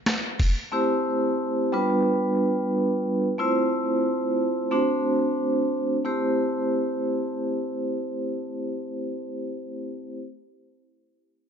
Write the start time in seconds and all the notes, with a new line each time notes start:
0.06 cross-stick, snare, closed hi-hat
0.40 kick, open hi-hat
0.72 A3 C4 E4 G4 C5
1.72 G3 B3 D4 F4 B4
3.38 A3 C4 E4 F4 C5
4.71 A3 C4 D4 F#4 C5
6.05 A3 C4 E4 G4 C5